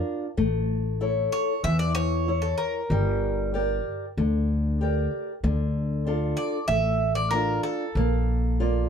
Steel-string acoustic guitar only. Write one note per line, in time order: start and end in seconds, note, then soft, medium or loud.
0.00 0.25 D4 soft
0.00 0.25 F4 soft
0.00 0.25 A#4 soft
0.37 0.99 A3 medium
1.01 1.51 E4 soft
1.01 1.52 A4 soft
1.01 1.52 C#5 medium
1.65 2.26 E3 medium
2.28 2.78 E4 soft
2.28 2.79 C#5 soft
2.91 3.52 G3 medium
3.54 4.04 G4 soft
3.54 4.05 A#4 soft
3.54 4.05 D5 medium
4.18 4.79 D3 medium
4.81 5.31 G4 soft
4.81 5.32 A#4 soft
4.81 5.32 D5 soft
5.44 6.05 D3 medium
6.07 6.57 D4 soft
6.07 6.57 F4 soft
6.07 6.57 A4 medium
6.71 7.31 A3 medium
7.33 7.83 D4 soft
7.33 7.84 F4 soft
7.97 8.57 A#3 medium
8.60 8.89 A#3 soft
8.60 8.89 F4 medium
8.60 8.89 D5 soft